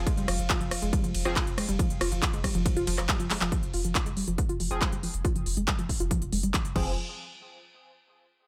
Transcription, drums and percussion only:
0.07 kick, closed hi-hat, ride
0.17 closed hi-hat
0.28 cross-stick, open hi-hat, ride
0.39 closed hi-hat
0.50 kick, clap, closed hi-hat, ride
0.61 closed hi-hat
0.71 cross-stick, open hi-hat, ride
0.82 closed hi-hat
0.93 kick, closed hi-hat, ride
1.04 closed hi-hat
1.15 open hi-hat, ride
1.25 cross-stick, closed hi-hat
1.36 kick, clap, closed hi-hat, ride
1.47 closed hi-hat
1.58 cross-stick, open hi-hat, ride
1.69 closed hi-hat
1.79 kick, closed hi-hat, ride
1.90 closed hi-hat
2.01 cross-stick, open hi-hat, ride
2.12 closed hi-hat
2.22 kick, clap, closed hi-hat, ride
2.33 closed hi-hat
2.44 kick, cross-stick, open hi-hat, ride
2.55 closed hi-hat
2.66 kick, closed hi-hat, ride
2.77 closed hi-hat
2.87 open hi-hat, ride
2.98 cross-stick, clap, closed hi-hat
3.09 kick, clap, closed hi-hat, ride
3.20 closed hi-hat
3.30 clap, open hi-hat, ride
3.41 clap, closed hi-hat
3.52 kick, closed hi-hat
3.63 closed hi-hat
3.74 open hi-hat
3.84 closed hi-hat
3.95 kick, clap, closed hi-hat
4.06 closed hi-hat
4.17 open hi-hat
4.28 closed hi-hat
4.38 kick, closed hi-hat
4.49 closed hi-hat
4.60 open hi-hat
4.71 closed hi-hat
4.81 kick, clap, closed hi-hat
4.92 closed hi-hat
5.03 open hi-hat
5.14 closed hi-hat
5.25 kick, closed hi-hat
5.36 closed hi-hat
5.46 open hi-hat
5.57 closed hi-hat
5.68 kick, clap, closed hi-hat
5.79 closed hi-hat
5.89 kick, open hi-hat
6.00 closed hi-hat
6.11 kick, closed hi-hat
6.22 closed hi-hat
6.33 open hi-hat
6.43 closed hi-hat
6.54 kick, clap, closed hi-hat
6.65 closed hi-hat
6.76 kick, crash

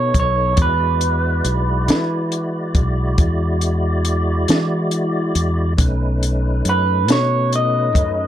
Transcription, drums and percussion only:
0.14 kick, closed hi-hat
0.57 kick, closed hi-hat
1.01 closed hi-hat
1.45 closed hi-hat
1.88 snare, closed hi-hat
2.32 closed hi-hat
2.75 kick, closed hi-hat
3.18 kick, closed hi-hat
3.61 closed hi-hat
4.05 closed hi-hat
4.48 snare, closed hi-hat
4.91 closed hi-hat
5.35 closed hi-hat
5.78 kick, closed hi-hat
6.23 closed hi-hat
6.65 closed hi-hat
7.08 snare, closed hi-hat
7.53 closed hi-hat
7.95 kick, closed hi-hat

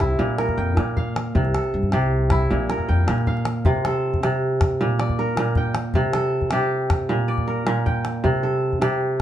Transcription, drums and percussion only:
0.00 calabash thump, calabash click
0.38 calabash click
0.49 calabash thump
0.77 calabash click
0.97 calabash thump
1.16 calabash click
1.35 calabash thump
1.45 calabash click
1.55 calabash click
1.64 calabash click
1.83 calabash thump
1.92 calabash click
2.02 calabash click
2.30 calabash thump, calabash click
2.40 calabash click
2.70 calabash click
2.79 calabash thump
2.89 calabash click
3.08 calabash click
3.18 calabash click
3.27 calabash thump
3.37 calabash click
3.45 calabash click
3.65 calabash thump
3.85 calabash click
4.14 calabash thump
4.23 calabash click
4.61 calabash thump, calabash click
5.00 calabash click
5.09 calabash thump
5.37 calabash click
5.55 calabash thump
5.75 calabash click
5.94 calabash thump
6.13 calabash click
6.41 calabash thump
6.51 calabash click
6.90 calabash thump, calabash click
7.38 calabash thump
7.67 calabash click
7.87 calabash thump
8.05 calabash click
8.24 calabash thump
8.73 calabash thump
8.82 calabash click

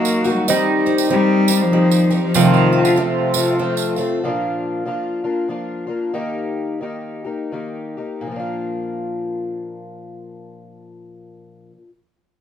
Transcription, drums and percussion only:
0.05 tambourine
0.24 tambourine
0.48 tambourine
0.86 tambourine
0.98 tambourine
1.48 tambourine
1.91 tambourine
2.11 tambourine
2.34 tambourine
2.54 tambourine
2.85 tambourine
2.96 tambourine
3.34 tambourine
3.77 tambourine
3.96 tambourine

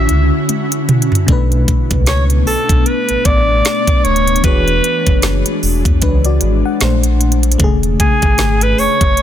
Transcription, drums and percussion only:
0.09 closed hi-hat
0.49 closed hi-hat, high tom
0.72 closed hi-hat
0.89 closed hi-hat, mid tom, open hi-hat
1.02 closed hi-hat
1.12 closed hi-hat, floor tom
1.28 kick, closed hi-hat
1.52 closed hi-hat
1.68 kick, closed hi-hat
1.91 kick, closed hi-hat
2.06 snare, closed hi-hat
2.30 closed hi-hat
2.47 open hi-hat
2.69 kick, closed hi-hat
2.86 closed hi-hat
3.09 closed hi-hat
3.25 kick, closed hi-hat
3.65 snare, closed hi-hat
3.87 kick, closed hi-hat
4.05 closed hi-hat
4.16 closed hi-hat
4.27 closed hi-hat
4.36 closed hi-hat
4.44 kick, closed hi-hat
4.68 closed hi-hat
4.84 closed hi-hat
5.07 kick, closed hi-hat
5.22 snare, closed hi-hat
5.46 closed hi-hat
5.63 open hi-hat
5.85 kick, closed hi-hat
6.02 kick, closed hi-hat
6.24 closed hi-hat
6.41 closed hi-hat
6.81 snare, closed hi-hat
7.03 closed hi-hat
7.21 closed hi-hat
7.32 closed hi-hat
7.43 closed hi-hat
7.52 closed hi-hat
7.60 kick, closed hi-hat
7.83 closed hi-hat
8.00 kick, closed hi-hat
8.22 kick, closed hi-hat
8.38 snare, closed hi-hat
8.61 closed hi-hat
8.78 open hi-hat
9.01 kick, closed hi-hat
9.17 closed hi-hat

